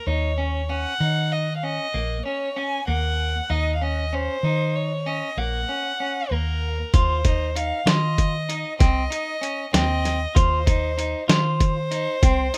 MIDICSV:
0, 0, Header, 1, 5, 480
1, 0, Start_track
1, 0, Tempo, 623053
1, 53, Time_signature, 11, 3, 24, 8
1, 9691, End_track
2, 0, Start_track
2, 0, Title_t, "Violin"
2, 0, Program_c, 0, 40
2, 50, Note_on_c, 0, 73, 88
2, 538, Note_on_c, 0, 78, 100
2, 550, Note_off_c, 0, 73, 0
2, 1018, Note_on_c, 0, 75, 85
2, 1030, Note_off_c, 0, 78, 0
2, 1199, Note_off_c, 0, 75, 0
2, 1203, Note_on_c, 0, 77, 66
2, 1259, Note_on_c, 0, 75, 93
2, 1271, Note_off_c, 0, 77, 0
2, 1738, Note_off_c, 0, 75, 0
2, 1741, Note_on_c, 0, 73, 82
2, 1979, Note_on_c, 0, 80, 91
2, 1991, Note_off_c, 0, 73, 0
2, 2215, Note_off_c, 0, 80, 0
2, 2220, Note_on_c, 0, 78, 92
2, 2698, Note_on_c, 0, 75, 87
2, 2709, Note_off_c, 0, 78, 0
2, 2883, Note_off_c, 0, 75, 0
2, 2887, Note_on_c, 0, 77, 64
2, 2946, Note_on_c, 0, 75, 81
2, 2957, Note_off_c, 0, 77, 0
2, 3189, Note_on_c, 0, 72, 97
2, 3201, Note_off_c, 0, 75, 0
2, 3665, Note_on_c, 0, 73, 85
2, 3677, Note_off_c, 0, 72, 0
2, 3901, Note_on_c, 0, 75, 79
2, 3913, Note_off_c, 0, 73, 0
2, 4144, Note_on_c, 0, 78, 88
2, 4156, Note_off_c, 0, 75, 0
2, 4860, Note_on_c, 0, 70, 86
2, 4872, Note_off_c, 0, 78, 0
2, 5342, Note_on_c, 0, 72, 85
2, 5354, Note_off_c, 0, 70, 0
2, 5819, Note_on_c, 0, 77, 81
2, 5830, Note_off_c, 0, 72, 0
2, 6061, Note_on_c, 0, 75, 86
2, 6073, Note_off_c, 0, 77, 0
2, 6772, Note_off_c, 0, 75, 0
2, 6776, Note_on_c, 0, 75, 82
2, 7466, Note_off_c, 0, 75, 0
2, 7505, Note_on_c, 0, 75, 94
2, 7980, Note_on_c, 0, 72, 86
2, 7992, Note_off_c, 0, 75, 0
2, 8694, Note_off_c, 0, 72, 0
2, 8699, Note_on_c, 0, 72, 94
2, 9691, Note_off_c, 0, 72, 0
2, 9691, End_track
3, 0, Start_track
3, 0, Title_t, "Clean electric guitar"
3, 0, Program_c, 1, 27
3, 57, Note_on_c, 1, 63, 73
3, 234, Note_off_c, 1, 63, 0
3, 291, Note_on_c, 1, 61, 68
3, 470, Note_off_c, 1, 61, 0
3, 534, Note_on_c, 1, 61, 66
3, 712, Note_off_c, 1, 61, 0
3, 774, Note_on_c, 1, 63, 64
3, 1130, Note_off_c, 1, 63, 0
3, 1258, Note_on_c, 1, 61, 64
3, 1435, Note_off_c, 1, 61, 0
3, 1495, Note_on_c, 1, 58, 66
3, 1673, Note_off_c, 1, 58, 0
3, 1737, Note_on_c, 1, 61, 65
3, 1915, Note_off_c, 1, 61, 0
3, 1975, Note_on_c, 1, 61, 70
3, 2154, Note_off_c, 1, 61, 0
3, 2214, Note_on_c, 1, 58, 73
3, 2571, Note_off_c, 1, 58, 0
3, 2695, Note_on_c, 1, 63, 78
3, 2873, Note_off_c, 1, 63, 0
3, 2939, Note_on_c, 1, 61, 62
3, 3116, Note_off_c, 1, 61, 0
3, 3180, Note_on_c, 1, 61, 63
3, 3357, Note_off_c, 1, 61, 0
3, 3424, Note_on_c, 1, 63, 62
3, 3777, Note_off_c, 1, 63, 0
3, 3900, Note_on_c, 1, 61, 61
3, 4077, Note_off_c, 1, 61, 0
3, 4143, Note_on_c, 1, 58, 70
3, 4319, Note_off_c, 1, 58, 0
3, 4382, Note_on_c, 1, 61, 64
3, 4558, Note_off_c, 1, 61, 0
3, 4624, Note_on_c, 1, 61, 67
3, 4800, Note_off_c, 1, 61, 0
3, 4868, Note_on_c, 1, 58, 66
3, 5220, Note_off_c, 1, 58, 0
3, 5344, Note_on_c, 1, 65, 72
3, 5519, Note_off_c, 1, 65, 0
3, 5585, Note_on_c, 1, 63, 66
3, 5760, Note_off_c, 1, 63, 0
3, 5821, Note_on_c, 1, 63, 60
3, 5998, Note_off_c, 1, 63, 0
3, 6057, Note_on_c, 1, 65, 65
3, 6413, Note_off_c, 1, 65, 0
3, 6539, Note_on_c, 1, 63, 64
3, 6717, Note_off_c, 1, 63, 0
3, 6773, Note_on_c, 1, 60, 71
3, 6953, Note_off_c, 1, 60, 0
3, 7014, Note_on_c, 1, 63, 63
3, 7193, Note_off_c, 1, 63, 0
3, 7252, Note_on_c, 1, 61, 69
3, 7432, Note_off_c, 1, 61, 0
3, 7496, Note_on_c, 1, 60, 75
3, 7852, Note_off_c, 1, 60, 0
3, 7973, Note_on_c, 1, 65, 78
3, 8153, Note_off_c, 1, 65, 0
3, 8216, Note_on_c, 1, 63, 61
3, 8394, Note_off_c, 1, 63, 0
3, 8456, Note_on_c, 1, 63, 66
3, 8635, Note_off_c, 1, 63, 0
3, 8691, Note_on_c, 1, 65, 71
3, 9049, Note_off_c, 1, 65, 0
3, 9176, Note_on_c, 1, 63, 62
3, 9355, Note_off_c, 1, 63, 0
3, 9420, Note_on_c, 1, 60, 72
3, 9597, Note_off_c, 1, 60, 0
3, 9659, Note_on_c, 1, 63, 63
3, 9691, Note_off_c, 1, 63, 0
3, 9691, End_track
4, 0, Start_track
4, 0, Title_t, "Fingered electric bass"
4, 0, Program_c, 2, 33
4, 51, Note_on_c, 2, 39, 79
4, 648, Note_off_c, 2, 39, 0
4, 773, Note_on_c, 2, 51, 82
4, 1369, Note_off_c, 2, 51, 0
4, 1496, Note_on_c, 2, 34, 78
4, 1694, Note_off_c, 2, 34, 0
4, 2217, Note_on_c, 2, 39, 76
4, 2614, Note_off_c, 2, 39, 0
4, 2695, Note_on_c, 2, 39, 86
4, 3292, Note_off_c, 2, 39, 0
4, 3414, Note_on_c, 2, 51, 76
4, 4011, Note_off_c, 2, 51, 0
4, 4138, Note_on_c, 2, 34, 82
4, 4336, Note_off_c, 2, 34, 0
4, 4862, Note_on_c, 2, 39, 76
4, 5257, Note_off_c, 2, 39, 0
4, 5344, Note_on_c, 2, 39, 74
4, 5937, Note_off_c, 2, 39, 0
4, 6053, Note_on_c, 2, 51, 75
4, 6651, Note_off_c, 2, 51, 0
4, 6782, Note_on_c, 2, 36, 77
4, 6979, Note_off_c, 2, 36, 0
4, 7501, Note_on_c, 2, 39, 71
4, 7896, Note_off_c, 2, 39, 0
4, 7983, Note_on_c, 2, 39, 81
4, 8576, Note_off_c, 2, 39, 0
4, 8698, Note_on_c, 2, 51, 87
4, 9293, Note_off_c, 2, 51, 0
4, 9420, Note_on_c, 2, 36, 77
4, 9617, Note_off_c, 2, 36, 0
4, 9691, End_track
5, 0, Start_track
5, 0, Title_t, "Drums"
5, 5344, Note_on_c, 9, 42, 60
5, 5345, Note_on_c, 9, 36, 90
5, 5421, Note_off_c, 9, 42, 0
5, 5422, Note_off_c, 9, 36, 0
5, 5582, Note_on_c, 9, 42, 51
5, 5584, Note_on_c, 9, 36, 62
5, 5659, Note_off_c, 9, 42, 0
5, 5661, Note_off_c, 9, 36, 0
5, 5827, Note_on_c, 9, 42, 51
5, 5904, Note_off_c, 9, 42, 0
5, 6064, Note_on_c, 9, 38, 101
5, 6064, Note_on_c, 9, 42, 75
5, 6141, Note_off_c, 9, 38, 0
5, 6141, Note_off_c, 9, 42, 0
5, 6304, Note_on_c, 9, 36, 57
5, 6305, Note_on_c, 9, 42, 50
5, 6381, Note_off_c, 9, 36, 0
5, 6382, Note_off_c, 9, 42, 0
5, 6545, Note_on_c, 9, 42, 51
5, 6622, Note_off_c, 9, 42, 0
5, 6783, Note_on_c, 9, 36, 89
5, 6783, Note_on_c, 9, 38, 27
5, 6783, Note_on_c, 9, 42, 67
5, 6860, Note_off_c, 9, 36, 0
5, 6860, Note_off_c, 9, 38, 0
5, 6860, Note_off_c, 9, 42, 0
5, 7026, Note_on_c, 9, 42, 58
5, 7103, Note_off_c, 9, 42, 0
5, 7265, Note_on_c, 9, 42, 58
5, 7342, Note_off_c, 9, 42, 0
5, 7505, Note_on_c, 9, 38, 89
5, 7505, Note_on_c, 9, 42, 69
5, 7582, Note_off_c, 9, 38, 0
5, 7582, Note_off_c, 9, 42, 0
5, 7745, Note_on_c, 9, 38, 27
5, 7745, Note_on_c, 9, 42, 57
5, 7822, Note_off_c, 9, 38, 0
5, 7822, Note_off_c, 9, 42, 0
5, 7982, Note_on_c, 9, 36, 89
5, 7985, Note_on_c, 9, 42, 65
5, 8060, Note_off_c, 9, 36, 0
5, 8062, Note_off_c, 9, 42, 0
5, 8222, Note_on_c, 9, 36, 64
5, 8223, Note_on_c, 9, 42, 48
5, 8299, Note_off_c, 9, 36, 0
5, 8300, Note_off_c, 9, 42, 0
5, 8464, Note_on_c, 9, 42, 58
5, 8541, Note_off_c, 9, 42, 0
5, 8702, Note_on_c, 9, 38, 101
5, 8702, Note_on_c, 9, 42, 78
5, 8779, Note_off_c, 9, 38, 0
5, 8779, Note_off_c, 9, 42, 0
5, 8940, Note_on_c, 9, 36, 61
5, 8941, Note_on_c, 9, 42, 46
5, 9017, Note_off_c, 9, 36, 0
5, 9018, Note_off_c, 9, 42, 0
5, 9180, Note_on_c, 9, 42, 52
5, 9257, Note_off_c, 9, 42, 0
5, 9420, Note_on_c, 9, 36, 88
5, 9421, Note_on_c, 9, 42, 64
5, 9497, Note_off_c, 9, 36, 0
5, 9498, Note_off_c, 9, 42, 0
5, 9660, Note_on_c, 9, 42, 52
5, 9691, Note_off_c, 9, 42, 0
5, 9691, End_track
0, 0, End_of_file